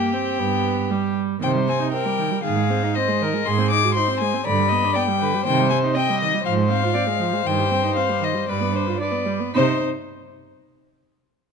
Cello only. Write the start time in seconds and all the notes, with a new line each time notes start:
0.39 G2
1.42 C3
2.45 G#2
3.47 G#2
4.46 G2
5.46 C3
6.46 G#2
7.46 G2
8.51 G2
9.55 C3